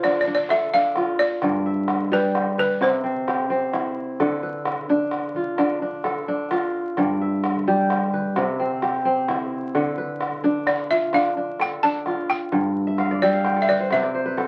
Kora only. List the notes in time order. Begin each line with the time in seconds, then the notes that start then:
Already playing: D3 F4 B4
0.04 D4
0.27 D4
0.51 A4
0.74 D4
0.97 F4
1.43 G2 D5
1.66 E5
2.12 G3 G4
2.58 B4
2.81 C3
3.04 C4
3.27 G4
3.50 C4
3.73 E4
4.20 D3 A4
4.43 B4
4.90 D4
5.36 F4
5.59 D4
5.82 D4
6.05 A4
6.28 D4
6.51 F4
6.98 G2 D5
7.21 E5
7.68 G3 G4
8.14 B4
8.36 C3
8.60 C4
8.82 G4
9.05 C4
9.28 E4
9.75 D3 A4
9.98 B4
10.44 D4
10.91 F4
11.14 D4
11.37 D4
11.60 A4
11.84 D4
12.07 F4
12.52 G2
12.87 E5
12.99 F5
13.11 D5
13.22 G3 E5
13.34 F5
13.45 G5
13.56 A4
13.69 B4
13.80 C5
13.92 C3 B4
14.03 D5
14.14 C5
14.26 B4
14.37 A4